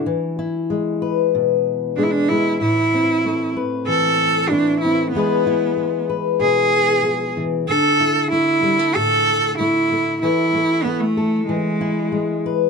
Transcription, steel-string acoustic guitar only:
\new Staff \with { instrumentName = "Steel-string acoustic guitar" } { \time 4/4 \key e \phrygian \tempo 4 = 94 << { r8 e'4 b'4. gis'8 gis8 | r8 c'4 b'4. e'8 c'8 | <gis e' gis' b'>8 e'4 b'2~ b'8 | r8 e'4 g16 a4~ a16 r8 a8 |
a8 a8 r8 a'8 r8 e'4 b'8 | } \\ { e4 gis4 b,4 gis8 r8 | a,4 a4 e4 a4 | e4 gis4 b,4 f8 e8 | d4 a8 r8 a,4 a8 r8 |
e4 a4 e4 gis4 | } >> }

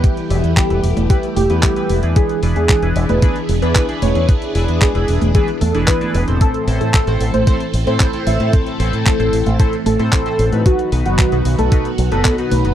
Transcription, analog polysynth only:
\new Staff \with { instrumentName = "Analog polysynth" } { \time 4/4 \key a \dorian \tempo 4 = 113 <e b e' g' b'>8 <e b e' g' b'>8. <e b e' g' b'>8. <e b e' g' b'>16 r8 <e b e' g' b'>8 <e b e' g' b'>8 <e d' e' gis' b'>16~ | <e d' e' gis' b'>8 <e d' e' gis' b'>8. <e d' e' gis' b'>8. <e d' e' gis' b'>16 r8 <e d' e' gis' b'>8 <e d' e' gis' b'>8 <e d' e' gis' b'>16~ | <e d' e' gis' b'>8 <e d' e' gis' b'>8. <e d' e' gis' b'>8. <e d' e' gis' b'>16 r8 <e d' e' gis' b'>8 <e d' e' gis' b'>8 <a, c' e' a' c''>16~ | <a, c' e' a' c''>8 <a, c' e' a' c''>8. <a, c' e' a' c''>8. <a, c' e' a' c''>16 r8 <a, c' e' a' c''>8 <a, c' e' a' c''>8 <a, c' e' a' c''>16~ |
<a, c' e' a' c''>8 <a, c' e' a' c''>8. <a, c' e' a' c''>8. <a, c' e' a' c''>16 r8 <a, c' e' a' c''>8 <a, c' e' a' c''>8 <b, b dis' fis' b'>16~ | <b, b dis' fis' b'>8 <b, b dis' fis' b'>8. <b, b dis' fis' b'>8. <b, b dis' fis' b'>16 r8 <b, b dis' fis' b'>8 <b, b dis' fis' b'>8 <b, b dis' fis' b'>16 | }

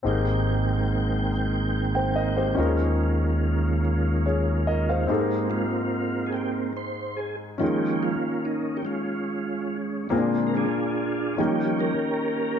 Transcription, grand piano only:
<<
  \new Staff \with { instrumentName = "Grand piano" } { \time 6/8 \key aes \major \tempo 4. = 48 << { r2 r16 <c'' g''>16 <bes' ees''>16 <g' c''>16~ | <g' c''>16 r4. r16 <aes' des''>8 <bes' ees''>16 <c'' f''>16~ | <c'' f''>16 r2 r8. | r2. |
r2. | } \\ { <c' ees' g' aes' bes'>2. | <des' ees' f' g' aes' bes'>2. | <c' ees' g' aes' a' bes'>2. | <des' ees' f' aes' bes'>2. |
<bes c' d' f' aes' bes'>4. <bes des' ees' g' bes'>4. | } >> }
  \new Staff \with { instrumentName = "Grand piano" } { \clef bass \time 6/8 \key aes \major aes,4. r4. | ees4. r4. | aes,4. r4. | ees4. r4. |
bes,4. ees4. | }
>>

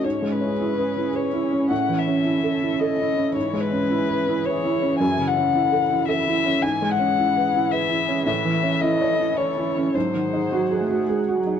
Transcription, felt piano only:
\new Staff \with { instrumentName = "Felt piano" } { \time 3/4 \key e \major \tempo 4 = 109 \tuplet 3/2 { gis,8 gis8 cis'8 e'8 b'8 e'8 b'8 e'8 cis'8 } | \tuplet 3/2 { a,8 e8 cis'8 e'8 a'8 e'8 a'8 e'8 cis'8 } | \tuplet 3/2 { gis,8 gis8 cis'8 e'8 b'8 e'8 b'8 e'8 cis'8 } | \tuplet 3/2 { fis,8 cis8 cis'8 e'8 a'8 e'8 a'8 e'8 cis'8 } |
\tuplet 3/2 { gis,8 gis8 cis'8 e'8 b'8 e'8 b'8 e'8 cis'8 } | \tuplet 3/2 { a,8 e8 cis'8 e'8 cis''8 e'8 cis''8 e'8 cis'8 } | \tuplet 3/2 { gis,8 dis8 dis'8 fis'8 gis'8 fis'8 gis'8 fis'8 dis'8 } | }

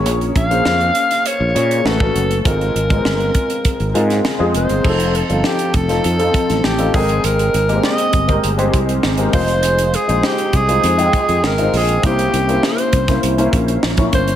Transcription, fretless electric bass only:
\new Staff \with { instrumentName = "Fretless electric bass" } { \clef bass \time 4/4 \key f \minor \tempo 4 = 100 bes,,8 bes,,8 f,8 r8. bes,,16 bes,8 a,,8 fis,,8 | aes,,8 aes,,8 g,,8 r8. aes,,16 aes,8 r16 f,16 f,,16 g,,16 | f,,8. g,,16 r8 f,,8 f,8 r16 a,,16 a,,8 aes,,8 | aes,,8 aes,,8 r8 g,,8 g,,8 c,8 aes,,8 f,,8~ |
f,,8. bes,,16 r8 c,8 f,8 r16 f,16 aes,,8 bes,,8 | c,8 c,8 r8 c,8 c,8 bes,,8 bes,,8 g,,8 | }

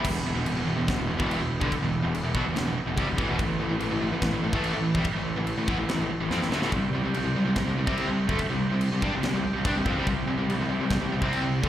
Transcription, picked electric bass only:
\new Staff \with { instrumentName = "Picked electric bass" } { \clef bass \time 4/4 \key e \minor \tempo 4 = 144 e,,8 e,,16 e,,16 e,,16 e,,16 e,,16 e,,16 e,,16 e,,16 e,,16 e,,8 e,,8 g,,16 | r16 e,,8 e,,8 e,,16 b,,16 e,,16 e,,16 e,,16 r16 e,,16 c,16 e,,16 a,,16 e,,16 | a,,8 a,,16 a,,16 a,,16 a,,16 a,,16 a,,16 a,,16 a,,16 a,,16 a,,8 a,,8 c,16 | r16 a,,8 a,,8 a,,16 e,16 a,,16 a,,16 a,,16 r16 a,,16 f,16 a,,16 d,16 a,,16 |
c,8 c,16 c,16 c,16 c,16 c,16 c,16 c,16 c,16 c,16 c,8 c,8 d,16 | r16 c,8 c,8 c,16 g,16 c,16 c,16 c,16 r16 c,16 g,16 c,16 f,16 c,16 | c,8 c,16 c,16 c,16 c,16 c,16 c,16 c,16 c,16 c,16 c,8 c,8 d,16 | }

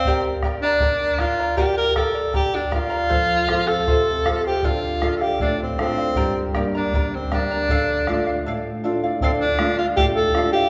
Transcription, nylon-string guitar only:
\new Staff \with { instrumentName = "Nylon-string guitar" } { \time 2/4 \key d \minor \tempo 4 = 79 r2 | r2 | f8 <c' f' a'>8 c8 <c' f' a'>8 | d8 <d' f' a'>8 a,8 <d' f' a'>8 |
g,8 <g bes d'>8 d8 <g bes d'>8 | d8 <a d' f'>8 a,8 <a d' f'>8 | d8 <a d' f'>8 a,8 <a d' f'>8 | }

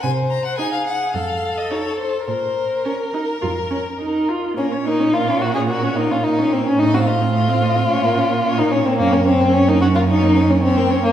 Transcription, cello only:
\new Staff \with { instrumentName = "Cello" } { \clef bass \time 4/4 \key bes \minor \tempo 4 = 108 c4 r4 f,4 r4 | bes,4 r4 f,4 r4 | bes,1 | a,2 bes,2 |
ges,1 | }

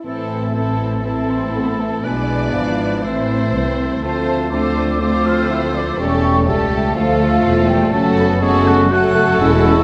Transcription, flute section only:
\new Staff \with { instrumentName = "Flute section" } { \time 4/4 \key a \minor \tempo 4 = 122 e''4 a''4 a''8 c'''8 b''8 a''8 | gis''4 f''4 e''4. r8 | a''4 d'''4 d'''8 f'''8 e'''8 d'''8 | cis'''4 a''4 f''4. g''8 |
\key fis \minor a''8 b''8 cis'''4 fis'''4 e'''4 | }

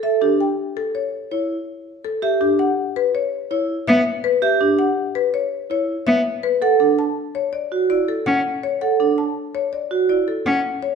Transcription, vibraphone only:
\new Staff \with { instrumentName = "Vibraphone" } { \time 6/4 \key e \dorian \tempo 4 = 164 a'8 d'8 r2 r8 e'8 r2 | g'8 d'8 r2 r8 e'8 r2 | g'8 d'8 r2 r8 e'8 r2 | a'8 d'8 r2 fis'8 e'8 r2 |
a'8 d'8 r2 fis'8 e'8 r2 | }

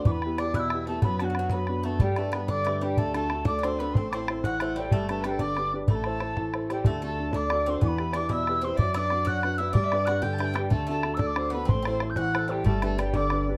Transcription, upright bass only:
\new Staff \with { instrumentName = "Upright bass" } { \clef bass \time 6/8 \key a \dorian \tempo 4. = 124 e,2. | fis,2. | g,2. | d,2. |
a,,2. | g,,2. | a,,2. | d,2. |
e,2. | fis,2. | g,2. | d,2. |
a,,2. | g,,2. | }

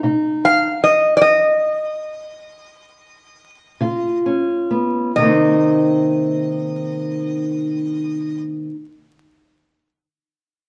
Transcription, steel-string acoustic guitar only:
\new Staff \with { instrumentName = "Steel-string acoustic guitar" } { \time 12/8 \key c \minor \tempo 4. = 43 << { ees'4 r2. r8 f'8 des'8 ces'8 | <ees bes c' ees'>1. | } \\ { c4 r2. r8 des4 r8 | c1. | } >> }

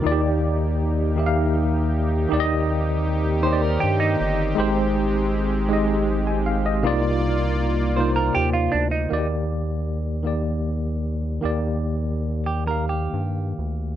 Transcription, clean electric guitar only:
\new Staff \with { instrumentName = "Clean electric guitar" } { \time 6/8 \key ees \major \tempo 4. = 53 r2. | r4. c''16 bes'16 g'16 ees'8. | r2. | r4. c''16 bes'16 g'16 f'16 d'16 ees'16~ |
ees'16 r2 r8. | r4 r16 g'16 bes'16 g'4~ g'16 | }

